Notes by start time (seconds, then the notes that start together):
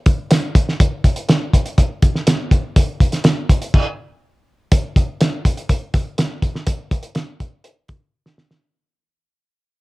0.06 kick, closed hi-hat
0.31 snare, closed hi-hat
0.55 kick, closed hi-hat
0.69 snare
0.80 kick, closed hi-hat
1.04 kick, closed hi-hat
1.16 closed hi-hat
1.29 snare, closed hi-hat
1.53 kick, closed hi-hat
1.66 closed hi-hat
1.78 kick, closed hi-hat
2.02 kick, closed hi-hat
2.15 snare
2.27 snare, closed hi-hat
2.51 kick, closed hi-hat
2.76 kick, closed hi-hat
3.00 kick, closed hi-hat
3.12 snare, closed hi-hat
3.24 snare, closed hi-hat
3.49 kick, closed hi-hat
3.62 closed hi-hat
3.74 kick, crash
4.72 kick, closed hi-hat
4.96 kick, closed hi-hat
5.21 snare, closed hi-hat
5.45 kick, closed hi-hat
5.57 closed hi-hat
5.69 kick, closed hi-hat
5.94 kick, closed hi-hat
6.18 snare, closed hi-hat
6.42 kick, closed hi-hat
6.55 snare
6.67 kick, closed hi-hat
6.91 kick, closed hi-hat
7.03 closed hi-hat
7.15 snare, closed hi-hat
7.40 kick, closed hi-hat
7.64 closed hi-hat
7.88 kick, closed hi-hat
8.26 snare
8.38 snare
8.51 snare